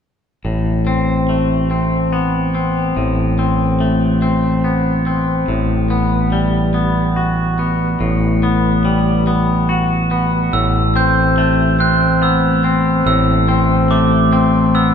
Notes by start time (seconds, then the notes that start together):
0.45 A1 A2
0.87 C4
1.29 A3
1.71 C4
2.13 B3
2.55 C4
2.97 A1 A2
3.39 C4
3.80 A3
4.22 C4
4.64 B3
5.06 C4
5.48 A1 A2
5.90 B3
6.32 G3
6.74 B3
7.16 F#4
7.59 B3
8.00 A1 A2
8.43 B3
8.85 G3
9.27 B3
9.69 F#4
10.11 B3
10.53 A1 A2 E6
10.96 C4 G6
11.38 A3
11.80 C4 F#6
12.22 B3 E6
12.64 C4
13.06 A1 A2 E6
13.48 C4
13.91 A3 D6
14.33 C4
14.75 B3 E6